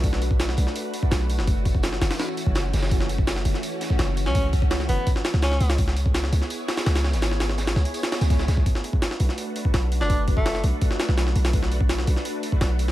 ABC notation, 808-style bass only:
X:1
M:4/4
L:1/16
Q:1/4=167
K:Bdor
V:1 name="808-style bass" clef=bass
B,,,6 B,,, z4 z B,,,3 F,,,- | F,,,6 F,,, z4 F,,,3 F,,,2- | F,,,6 F,,, z4 z F,,,3 C,,- | C,,6 F,,, z4 C,,3 C,,2- |
C,,6 C,, z4 z C,,3 G,,,- | G,,,6 C,, z4 C,,3 C,,2 | z6 B,,, z4 z B,,,3 F,,,- | F,,,6 B,,, z4 B,,,3 B,,,2- |
B,,,6 B,,, z4 z B,,,3 F,,, |]